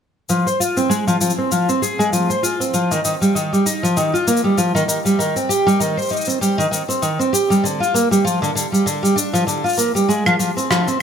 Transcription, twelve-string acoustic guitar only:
0.29 F3
0.46 C5
0.60 F4
0.77 C4
0.89 G#3
1.07 F3
1.21 F3
1.38 C4
1.52 F3
1.69 C4
1.82 G#4
1.99 G#3
2.13 F3
2.30 C5
2.43 F4
2.60 C4
2.74 F3
2.91 D#3
3.05 D#3
3.21 G3
3.35 D#3
3.52 G3
3.66 D#4
3.83 F3
3.97 D#3
4.14 F4
4.27 A#3
4.44 G3
4.58 F3
4.75 D#3
4.88 D#3
5.05 G3
5.19 D#3
5.36 C4
5.49 G4
5.66 G3
5.80 D#3
5.97 C5
6.11 D#4
6.27 C4
6.41 G3
6.58 D#3
6.71 D#3
6.88 C4
7.02 D#3
7.19 C4
7.33 G4
7.50 G3
7.64 D3
7.80 F4
7.94 A#3
8.11 G3
8.25 F3
8.42 D3
8.55 D3
8.72 G3
8.86 D3
9.03 G3
9.16 D4
9.33 F3
9.47 D3
9.64 F4
9.77 A#3
9.95 G3
10.08 G#3
10.26 F3
10.39 F3
10.57 C4
10.70 F3
10.87 C4

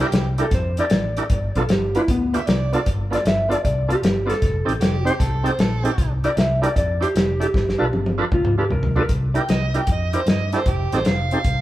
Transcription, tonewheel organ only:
0.01 E4 G4 A#4
0.38 D4 E4 G4 A#4
0.78 D4 E4 G4 A#4
1.17 D4 E4 G4 A#4
1.56 B3 D4 F4 A4
1.95 B3 D4 F4 B4
2.33 B3 D4 F4 G4
2.72 B3 D4 F4 A4
3.11 B3 D4 F4 A4
3.49 B3 D4 F4 A4
3.88 B3 D4 F4 A4
4.26 B3 D4 F4 A4
4.65 C4 D#4 G4 A4
5.05 C4 D#4 G4 C5
5.43 C4 D#4 G4 A4
5.83 C4 D#4 G4 A4
6.24 D4 E4 G4 A#4
6.62 D4 E4 G4 A#4
7.00 D4 E4 G4 C5
7.40 D4 E4 G4 A4
7.78 D4 F4 A4 B4
8.18 D4 F4 A4 B4
8.58 D4 F4 A4 B4
8.96 D4 F4 A4 B4
9.34 D4 E4 G4 A#4
9.74 D4 E4 G4 A#4
10.13 D4 E4 G4 A#4
10.53 D4 E4 G4 A4
10.93 C4 D#4 G4 A4
11.32 C4 D#4 G4 A4

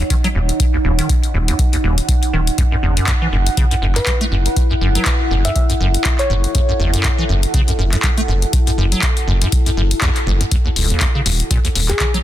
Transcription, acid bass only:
0.10 D#3
0.24 F#3
0.35 D#2
0.74 D#2
0.85 D#2
0.99 D#3
1.34 D#2
1.48 D#2
1.73 D#2
1.84 D#2
2.33 D#3
2.58 F#2
2.72 F#2
2.83 E2
2.97 F#2
3.22 E3
3.33 F#2
3.57 C#3
3.71 F#2
3.82 F#2
3.96 F#2
4.07 F#3
4.21 A3
4.32 F#2
4.71 F#2
4.81 F#2
4.95 F#3
5.31 F#2
5.45 F#2
5.70 F#2
5.80 F#2
6.30 G#2
6.55 F#2
6.69 F#2
6.80 E2
6.94 F#2
7.04 F#2
7.18 E3
7.29 F#2
7.54 C#3
7.68 F#2
7.79 F#2
7.93 F#2
8.04 F#3
8.18 A3
8.28 F#2
8.67 F#2
8.78 F#2
8.92 F#3
9.28 F#2
9.42 F#2
9.66 F#2
9.77 F#2
10.02 E2
10.27 F#1
10.41 F#2
10.51 D#2
10.65 D#2
10.76 C#2
10.90 D#2
11.15 C#3
11.26 D#2
11.51 A#2
11.65 D#2
11.75 D#2
11.89 D#2
12.00 D#3
12.14 F#3

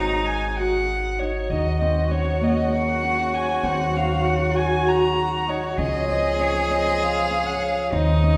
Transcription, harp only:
Already playing: C4 D#4
0.00 F#4
0.60 F#4
1.21 D#4
1.51 D#4
1.81 C4
2.11 C#4
2.41 A#3
3.03 C#4
3.63 C4
3.94 C#4
4.26 F#4
4.86 F#4
5.47 D#4
5.78 C#4
6.08 C4
6.39 C#4
6.70 C4
7.30 C#4
7.92 C4
8.23 C#4

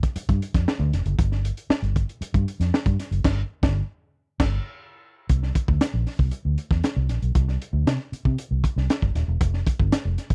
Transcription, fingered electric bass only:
0.16 muted fingered electric bass stroke
0.29 G2
0.55 F2
0.80 D2
0.92 F1
1.06 F#1
1.18 G1
1.70 muted fingered electric bass stroke
1.82 G1
2.21 muted fingered electric bass stroke
2.34 G2
2.60 F2
2.86 G2
3.11 F#1
3.24 G1
3.63 G1
4.40 G1
5.30 C2
5.68 D2
5.94 A#1
6.19 C2
6.45 D2
6.71 E2
6.96 C2
7.09 A#1
7.22 B1
7.35 C2
7.73 D2
7.86 C3
8.12 muted fingered electric bass stroke
8.25 C3
8.51 C2
8.76 C2
9.02 G1
9.15 D#1
9.28 E1
9.41 F1
9.80 G1
10.05 F1
10.30 G1

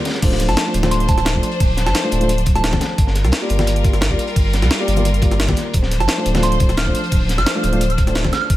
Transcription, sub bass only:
0.22 D1
0.49 G1
0.74 D1
1.60 D1
1.86 G1
2.12 D1
2.98 G1
3.24 C2
3.50 G1
4.36 G1
4.62 C2
4.88 G1
5.74 D1
6.00 G1
6.26 D1
7.12 D1
7.38 G1
7.64 D1
8.50 G1

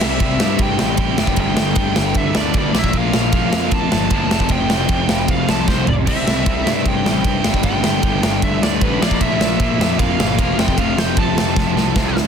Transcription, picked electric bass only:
0.02 C2
0.20 C2
0.40 G2
0.59 G2
0.80 A1
0.98 A1
1.18 G1
1.37 G1
1.58 G1
1.76 G1
1.96 G1
2.15 G1
2.36 D2
2.54 D2
2.74 A#1
2.94 A#1
3.14 A#1
3.33 A#1
3.53 F2
3.71 F2
3.92 G1
4.11 G1
4.31 F1
4.50 F1
4.70 F1
4.89 F1
5.10 F1
5.28 F1
5.49 C2
5.68 C2
5.88 F1
6.07 C2
6.28 C2
6.46 C2
6.66 G2
6.86 G2
7.06 A1
7.25 G2
7.45 G1
7.63 G1
7.85 G1
8.03 G1
8.24 G1
8.42 G1
8.63 D2
8.82 A1
9.01 A#1
9.21 A#1
9.40 A#1
9.60 A#1
9.79 F2
9.99 F2
10.18 G1
10.39 E1
10.58 F1
10.78 F1
10.97 F1
11.17 F1
11.37 F1
11.56 F1
11.76 C2
11.96 C2
12.16 D2

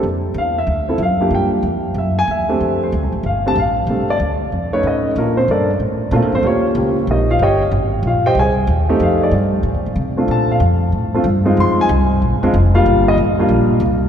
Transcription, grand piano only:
0.38 F5
0.58 E5
0.88 C4 E4 F4 A4
0.98 E5
1.02 F5
1.20 A#3 D4 F4 G4
1.34 G5
1.98 E5
2.19 G#5
2.31 E5
2.49 A3 C4 D4 G4
2.83 C5
3.26 F5
3.46 A3 C4 D4 G4 A5
3.59 F5
3.89 A3 C4 D4 G4
4.10 D5
4.73 A3 C#4 D#4 B4 C#5
4.87 D#5
5.18 A#3 D4 F4 A#4
5.37 C4 C5
5.51 D4 A4 A#4 D5
6.12 A3 C4 D4 F4 A#4
6.16 A#3 F4
6.35 C4 C5
6.44 A#3 C#4 F4 G4 A#4 C#5
6.77 A#3 C#4 F4 G4
7.11 D#4 G4 A#4 D#5
7.30 F4 F5
7.42 G4 C#5 D#5 G5
8.07 F4 F5
8.26 G4 C5 D#5 G5
8.39 G#4 C5 D#5 G#5
8.89 A3 C4 D#4 G4
9.03 F5
9.23 D5
10.17 A3 C4 D4 F4
10.31 A5
10.51 F5
11.14 A3 C4 D4 F4
11.45 G#3 C4 D#4 F4
11.60 C6
11.81 G#5
12.43 G#3 C4 D4 F4
12.74 G3 A#3 D4 F4 F5
13.08 D#5
13.39 G3 A#3 D4 F4

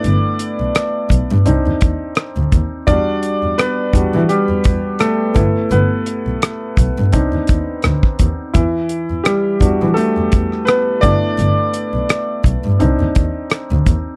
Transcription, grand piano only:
Already playing: A3 B3 D4 E4 D5
1.45 C4 D4 D#4
2.87 G3 D4 F#4 D5
3.58 B3 B4
3.94 G3 D4 F#4
4.29 G3 G4
5.00 A3 A4
5.34 A3 B3 E4
5.71 B3 B4
7.12 C4 D4 D#4
8.53 E3 E4
9.24 G3 G4
9.61 G3 D4 F#4
9.94 A3 A4
10.65 B3 B4
11.01 A3 B3 D4 E4 D5
12.79 C4 D4 D#4

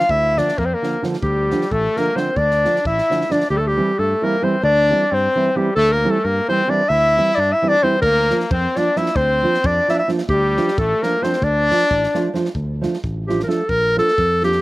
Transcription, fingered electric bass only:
0.10 D2
0.59 F2
1.23 D2
1.72 A1
2.36 D2
2.85 A1
3.50 D2
3.99 G2
4.63 D2
5.12 G2
5.77 D2
6.25 G2
6.90 D2
7.37 G2
8.02 D2
8.51 F2
9.15 D2
9.64 F2
10.29 D2
10.78 A1
11.42 D2
11.91 A1
12.56 D2
13.04 A1
13.70 A#1
14.19 F2

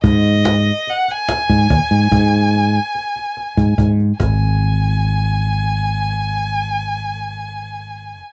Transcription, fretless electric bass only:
0.04 G#2
1.49 G#2
1.70 D#2
1.91 G#2
2.11 G#2
3.57 G#2
3.78 G#2
4.20 G#1

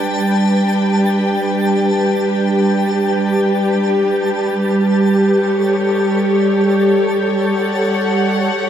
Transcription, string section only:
Already playing: G3 D4 G4 B4 G5
5.40 C#5
5.53 A4
7.59 F#5

